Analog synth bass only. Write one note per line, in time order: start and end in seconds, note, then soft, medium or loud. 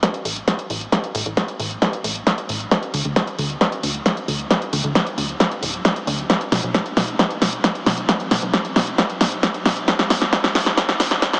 0.25 0.43 A1 medium
0.70 0.87 A1 medium
1.15 1.23 A1 loud
1.26 1.43 A1 medium
1.59 1.77 A1 medium
2.04 2.22 A1 medium
2.49 2.66 A1 medium
2.94 3.03 D2 loud
3.05 3.22 D2 medium
3.39 3.56 D2 medium
3.83 4.01 D2 medium
4.28 4.46 D2 medium
4.73 4.82 D2 loud
4.84 5.01 D2 medium
5.18 5.35 D2 medium
5.62 5.80 D1 medium
6.07 6.25 D2 loud
6.52 6.61 B1 loud
6.63 6.81 B1 medium
6.97 7.14 B1 medium
7.42 7.59 B1 medium
7.86 8.04 B1 medium
8.31 8.40 B1 loud
8.42 8.60 B1 medium
8.76 8.93 B1 loud
9.21 9.38 B1 medium
9.65 9.83 B1 medium
10.10 10.19 E1 loud
10.21 10.39 E1 medium
10.55 10.72 E1 loud
11.00 11.17 E1 medium